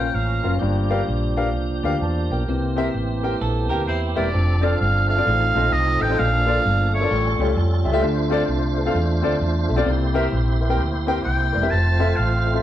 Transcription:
Already playing: fingered electric bass A#1, tonewheel organ F3 A#3 C#4 A#4, oboe G5
0.14 fingered electric bass A1, oboe F5
0.43 fingered electric bass F#1, grand piano C#4 F4 A#4 F5
0.59 fingered electric bass G1, grand piano G2, tonewheel organ F3 A#3 D4 G4
0.90 grand piano D4 G4 A#4 F5
1.08 fingered electric bass A#1
1.36 grand piano D4 G4 A#4 F5
1.54 fingered electric bass C2
1.83 fingered electric bass D2, grand piano D4 G4 A#4 F5
2.01 fingered electric bass E2, grand piano C5 A5
2.30 fingered electric bass B1, grand piano A#4 G5
2.48 fingered electric bass C2, grand piano C3, tonewheel organ E3 A#3 C4 G4
2.76 grand piano C4 G4 A#4 E5
2.94 fingered electric bass A1
3.23 grand piano C4 G4 A#4 G5
3.41 fingered electric bass A#1, clean electric guitar A4
3.69 fingered electric bass D2, grand piano C4 G4 A#4 G5, clean electric guitar G4 A#4
3.87 fingered electric bass E2, clean electric guitar E4 G4, oboe C5
4.15 fingered electric bass E1, grand piano C4 G4 A#4 E5, oboe D5
4.33 fingered electric bass F1, tonewheel organ F3 C4 D4 A4
4.61 grand piano C4 F4 A4 D5, oboe F5
4.80 fingered electric bass G1, oboe F5
5.09 grand piano A4 E5, oboe F5
5.17 grand piano C4 F4 A4 D5
5.25 fingered electric bass A1, grand piano A2, tonewheel organ F3 C4 D#4 G#4
5.34 tonewheel organ A4
5.55 fingered electric bass A#1, grand piano C4 F4 A4 D#5
5.72 fingered electric bass C2, oboe D#5
6.01 fingered electric bass A1, grand piano A4 C5, oboe G5
6.10 grand piano C4 F4 A4 D#5
6.19 fingered electric bass A#1, grand piano A#2, tonewheel organ F3 A#3 C4 A4, oboe F5
6.25 tonewheel organ D4
6.46 grand piano A#3 F4 A4 D5
6.65 fingered electric bass G1
6.92 grand piano A4 E5, oboe C#5
7.01 grand piano A#3 F4 A4 D5
7.11 fingered electric bass A1, grand piano A2, tonewheel organ G3 C#4 F4 A4
7.39 fingered electric bass C#2, grand piano A3 F4 G4 C#5
7.56 fingered electric bass F2
7.84 fingered electric bass C#2, grand piano G4 E5
7.92 grand piano A3 F4 G4 E5
8.01 fingered electric bass D2, grand piano D3, tonewheel organ A3 D4 F4 C5
8.30 grand piano C4 F4 A4 D5
8.48 fingered electric bass C2
8.77 grand piano A4 C5
8.85 grand piano C4 F4 A4 F5
8.95 fingered electric bass E2
9.22 fingered electric bass D2, grand piano C4 F4 A4 D5
9.41 fingered electric bass E2
9.68 fingered electric bass B1, grand piano A4 E5
9.76 grand piano C4 F4 A4 D5
9.86 fingered electric bass C2, grand piano C3, tonewheel organ A#3 D#4 G4 C5
9.92 tonewheel organ E4
10.14 grand piano C4 G4 A#4 E5
10.33 fingered electric bass A#1
10.61 grand piano A#4 E5
10.69 grand piano C4 G4 A#4 G5
10.80 fingered electric bass D2
11.07 grand piano C4 G4 A#4 G5
11.25 fingered electric bass C2, oboe G5
11.53 fingered electric bass E1, grand piano A#4 D5
11.62 grand piano C4 G4 A#4 E5
11.71 fingered electric bass F1, tonewheel organ A3 C4 F4 B4, oboe A5
11.77 tonewheel organ C5
11.99 grand piano C4 F4 A4 E5
12.16 fingered electric bass A1, oboe F5
12.45 grand piano A4 E5
12.54 grand piano C4 F4 A4 E5

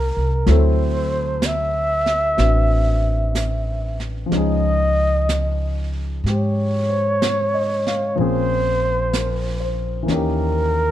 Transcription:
Already playing: upright bass C2, grand piano F3 G#3 A#3 C4 D#4 F4 G#4 G5, flugelhorn A#4
0.16 upright bass C2
0.46 upright bass D2, grand piano F#3 A3 C4 E4, flugelhorn C5, brush sweep, snare
0.51 grand piano A4
1.42 flugelhorn E5, brush sweep, snare, hi-hat pedal
2.06 snare
2.37 upright bass A1, grand piano C4 D4 F#4 B4, brush sweep, snare
3.35 brush sweep, snare, hi-hat pedal
4.00 snare
4.26 grand piano F3
4.30 upright bass C#2, grand piano G#3 C#4, flugelhorn D#5, brush sweep, snare
4.35 grand piano D#4 G#4
5.29 brush sweep, snare, hi-hat pedal
6.24 upright bass G#2, grand piano G4, brush sweep, snare
6.29 flugelhorn C#5
6.89 grand piano C5
7.22 grand piano C#5, brush sweep, snare, hi-hat pedal
7.54 grand piano D#5
7.87 grand piano F5, snare
8.16 upright bass A#1, grand piano F3 A#3 C4 C#4, brush sweep
8.20 grand piano G#4, flugelhorn C5
9.13 grand piano A#4, brush sweep, snare, hi-hat pedal
9.60 grand piano C5
10.03 grand piano E3 A#3
10.08 upright bass D#2, grand piano C#4 D#4, brush sweep, snare
10.13 grand piano G4, flugelhorn A#4

